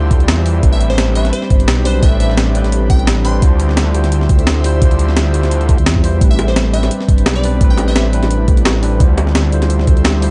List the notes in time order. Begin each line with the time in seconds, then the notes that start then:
Already playing: D2 G3 E4 F4 G4 C5 E5
0.11 kick, closed hi-hat
0.18 D2 G3 E4 F4, closed hi-hat
0.23 D5
0.28 E2, snare, closed hi-hat
0.46 open hi-hat
0.60 A1 G3 C4 D4 G4 B4, kick, closed hi-hat
0.66 B4
0.73 E5
0.81 closed hi-hat
0.90 C5, snare
0.98 snare, closed hi-hat
1.14 G3 C4 D4 B4 E5, closed hi-hat
1.25 snare, closed hi-hat
1.33 C5, closed hi-hat
1.42 snare
1.50 G1, kick, closed hi-hat
1.60 closed hi-hat
1.68 B1, snare, closed hi-hat
1.84 G3 C4 D4 B4 C5, open hi-hat
2.00 A1 G3 C4 D4 E5, kick, closed hi-hat
2.06 B4
2.20 E5, closed hi-hat
2.30 snare
2.37 snare, closed hi-hat
2.54 G3 C4 D4 B4, closed hi-hat
2.64 A1, snare, closed hi-hat
2.72 closed hi-hat
2.90 G5, kick, closed hi-hat
2.99 closed hi-hat
3.07 snare, closed hi-hat
3.24 G3 C4 D4 B4 C6, open hi-hat
3.40 D2 G3 E4 F4 C5 E5, kick, closed hi-hat
3.45 C5
3.60 closed hi-hat
3.69 snare
3.77 snare, closed hi-hat
3.93 D2 G3 E4 F4 C5, closed hi-hat
4.04 snare, closed hi-hat
4.12 closed hi-hat
4.21 snare
4.29 D2, kick, closed hi-hat
4.39 closed hi-hat
4.47 snare, closed hi-hat
4.63 G3 E4 F4 C5, open hi-hat
4.79 G3 E4 F4, kick, closed hi-hat
4.85 C5
4.91 closed hi-hat
4.99 closed hi-hat
5.09 snare
5.17 snare, closed hi-hat
5.33 G3 E4 F4 C5, closed hi-hat
5.43 snare, closed hi-hat
5.51 closed hi-hat
5.61 closed hi-hat
5.69 kick, closed hi-hat
5.78 D2, closed hi-hat
5.86 E2, snare, closed hi-hat
5.96 kick
6.02 G3 E4 F4 C5, open hi-hat
6.18 A1 G3 C4 D4 B4, kick, closed hi-hat
6.22 D4 B4
6.31 E5
6.39 closed hi-hat, high bongo
6.48 C5, snare
6.56 snare, closed hi-hat
6.72 G3 C4 D4 B4 E5, closed hi-hat
6.83 snare, closed hi-hat, high bongo
6.91 closed hi-hat
7.01 snare
7.08 G1, kick, closed hi-hat
7.18 closed hi-hat
7.26 B1, snare, closed hi-hat, high bongo
7.35 D5
7.42 G3 C4 D4 B4, open hi-hat
7.58 A1 G3 C4 D4, kick, closed hi-hat
7.64 B4
7.70 G5
7.78 closed hi-hat, high bongo
7.88 E5, snare
7.96 snare, closed hi-hat
8.12 G3 C4 D4 B4, closed hi-hat
8.22 A1, snare, closed hi-hat, high bongo
8.31 closed hi-hat
8.48 kick, closed hi-hat
8.57 closed hi-hat
8.65 snare, closed hi-hat, high bongo
8.82 G3 C4 D4 B4, open hi-hat
8.98 D2 G3 E4 F4 G4 C5 E5, kick, closed hi-hat
9.04 C5
9.18 closed hi-hat, high bongo
9.27 snare
9.35 snare, closed hi-hat
9.51 D2 G3 E4 F4 C5, closed hi-hat
9.62 snare, closed hi-hat, high bongo
9.70 closed hi-hat
9.79 snare
9.87 D2, kick, closed hi-hat
9.97 closed hi-hat
10.04 snare, closed hi-hat, high bongo
10.21 G3 E4 F4 C5, open hi-hat